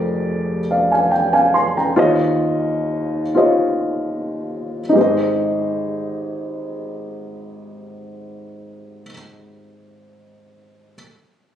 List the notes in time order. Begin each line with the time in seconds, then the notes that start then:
Already playing: F1 F2 G4 G#4 A#4 C5 D5
0.71 D5 F5
0.92 F5 G#5
1.11 G5
1.33 F5 G#5
1.54 G#5 C6
1.77 G5 A#5
1.96 D#2 D#3 F4 G4 C5 C#5 D#5
3.35 F4 G4 C5 C#5 D#5
4.89 D#4 G4
4.95 G#1 G#4 C5
5.01 D#5